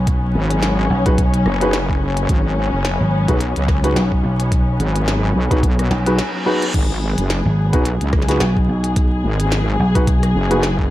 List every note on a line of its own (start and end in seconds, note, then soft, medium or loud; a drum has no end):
0.00 0.33 B1 loud
0.00 10.90 F#3 medium
0.00 10.90 B3 medium
0.00 6.73 C#4 medium
0.07 kick loud
0.07 closed hi-hat medium
0.35 0.89 G#1 loud
0.51 closed hi-hat soft
0.63 snare loud
0.63 closed hi-hat medium
0.90 1.44 B1 loud
1.06 1.13 D#4 medium
1.06 1.13 F#4 medium
1.06 1.13 G#4 medium
1.06 1.13 B4 loud
1.06 kick loud
1.06 closed hi-hat soft
1.18 kick loud
1.18 closed hi-hat medium
1.34 closed hi-hat soft
1.46 2.27 F#1 medium
1.46 cross-stick medium
1.61 1.73 D#4 medium
1.61 1.73 F#4 medium
1.61 1.73 G#4 medium
1.61 1.73 B4 medium
1.61 closed hi-hat soft
1.73 snare loud
1.73 closed hi-hat medium
1.90 kick medium
2.17 closed hi-hat medium
2.29 2.70 G#1 loud
2.29 kick loud
2.29 closed hi-hat medium
2.73 2.98 F#1 loud
2.85 snare loud
2.85 closed hi-hat medium
3.00 3.26 G#1 loud
3.28 3.54 B1 loud
3.28 3.36 D#4 medium
3.28 3.36 F#4 medium
3.28 3.36 G#4 medium
3.28 3.36 B4 medium
3.28 kick loud
3.28 closed hi-hat medium
3.40 closed hi-hat medium
3.56 3.94 C#2 medium
3.56 closed hi-hat soft
3.68 kick loud
3.68 cross-stick medium
3.68 snare medium
3.84 3.96 D#4 medium
3.84 3.96 F#4 medium
3.84 3.96 G#4 medium
3.84 3.96 B4 medium
3.84 closed hi-hat soft
3.96 4.22 B1 loud
3.96 snare loud
3.96 closed hi-hat medium
4.12 kick medium
4.23 4.77 B1 loud
4.40 closed hi-hat medium
4.52 kick loud
4.52 closed hi-hat medium
4.80 5.33 G#1 medium
4.80 closed hi-hat soft
4.96 closed hi-hat medium
5.08 snare loud
5.08 closed hi-hat medium
5.35 5.48 B1 loud
5.51 5.89 B1 loud
5.51 5.58 D#4 medium
5.51 5.58 F#4 medium
5.51 5.58 G#4 medium
5.51 5.58 B4 loud
5.51 kick loud
5.51 closed hi-hat medium
5.63 kick loud
5.63 closed hi-hat medium
5.63 reverse cymbal medium
5.79 cross-stick medium
5.79 closed hi-hat soft
5.90 6.18 B1 medium
5.90 snare medium
6.06 6.14 D#4 medium
6.06 6.14 F#4 medium
6.06 6.14 G#4 medium
6.06 6.14 B4 medium
6.06 closed hi-hat medium
6.19 snare loud
6.19 closed hi-hat medium
6.46 6.61 D#4 medium
6.46 6.61 F#4 medium
6.46 6.61 G#4 medium
6.46 6.61 B4 loud
6.62 closed hi-hat medium
6.74 7.15 G#1 loud
6.74 10.90 G#4 medium
6.74 kick loud
6.74 closed hi-hat medium
6.74 crash medium
7.18 7.43 F#1 loud
7.18 closed hi-hat medium
7.30 snare loud
7.30 closed hi-hat medium
7.45 7.71 G#1 loud
7.73 7.99 B1 loud
7.73 7.80 D#4 medium
7.73 7.80 F#4 medium
7.73 7.80 G#4 medium
7.73 7.80 B4 loud
7.73 kick loud
7.73 closed hi-hat medium
7.85 closed hi-hat medium
8.01 8.39 C#2 loud
8.01 closed hi-hat soft
8.13 kick loud
8.13 cross-stick medium
8.13 snare soft
8.22 snare soft
8.28 8.40 D#4 medium
8.28 8.40 F#4 medium
8.28 8.40 G#4 medium
8.28 8.40 B4 loud
8.28 snare soft
8.28 closed hi-hat medium
8.40 8.67 B1 medium
8.40 snare loud
8.40 closed hi-hat medium
8.57 kick medium
8.68 9.22 B1 loud
8.84 closed hi-hat medium
8.96 kick loud
8.96 closed hi-hat medium
9.24 9.78 G#1 loud
9.40 closed hi-hat medium
9.52 snare loud
9.52 closed hi-hat medium
9.80 10.33 B1 loud
9.95 10.03 D#4 medium
9.95 10.02 F#4 medium
9.95 10.02 G#4 medium
9.95 10.02 B4 loud
9.95 kick loud
9.95 closed hi-hat medium
10.07 kick loud
10.07 closed hi-hat medium
10.23 cross-stick medium
10.23 closed hi-hat soft
10.35 10.90 F#1 loud
10.51 10.62 D#4 medium
10.51 10.62 F#4 medium
10.51 10.62 G#4 medium
10.51 10.62 B4 medium
10.51 closed hi-hat medium
10.63 snare loud
10.63 closed hi-hat medium
10.79 kick medium